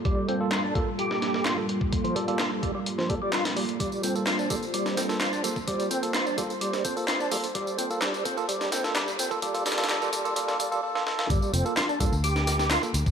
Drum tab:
HH |x---x---x---x---x---x---x---x---|x-x-x-x-x---x---x---x---x-x-o-x-|x---x---x---x---x---x---x---x---|x-x-x-x-x---x---x---x---x---o-x-|
TB |--------------------------------|--------------------------------|x-x-x-x-x-x-x-x-x-x-x-x-x-x-x-x-|x-x-x-x-x-x-x-x-x-x-x-x-x-x-x-x-|
CP |--------x---------------x-------|--------x---------------x-------|--------x---------------x-------|--------x---------------x-------|
SD |--------o---------o-o-o-o-------|--------o---------o-----o-o-----|--------o---------o-o-o-o-------|--------o---------o-----o-------|
BD |o-----------o-----------------o-|o-----------o-------o-----------|o-----------o-----------------o-|o-----------o-------o-----------|

HH |x---x---x---x---x---x---x---x---|x-x-xxxxx---x---x---x-----------|x---x---x---x---x---x---x---x---|
TB |x-x-x-x-x-x-x-x-x-x-x-x-x-x-x-x-|x-x-x-x-x-x-x-x-x-x-x-x---------|x-x-x-x-x-x-x-x-x-x-x-x-x-x-x-x-|
CP |--------x---------------x-------|--------x-----------------------|--------x---------------x-------|
SD |--------o---------o-o-o-o-------|----ooooo---------o-------o-o-o-|--------o---------o-o-o-o-------|
BD |o-----------o-----------------o-|o-----------o-------o-----------|o-----------o-----------------o-|